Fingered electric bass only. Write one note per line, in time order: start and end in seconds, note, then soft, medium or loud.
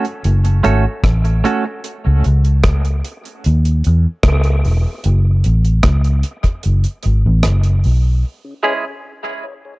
0.25 0.62 F#1 loud
0.66 0.84 G#1 medium
1.04 1.42 A1 loud
2.07 2.24 C#2 loud
2.26 3.01 C#2 medium
3.46 3.83 D#2 loud
3.87 4.05 E2 medium
4.25 4.62 C#2 medium
4.66 4.84 E1 medium
5.06 5.43 F#1 loud
5.46 5.83 A1 medium
5.85 6.22 C#2 loud
6.66 6.85 F#1 medium
7.06 7.25 G#1 medium
7.26 7.44 A1 loud
7.46 7.83 F#1 medium
7.86 8.23 B1 medium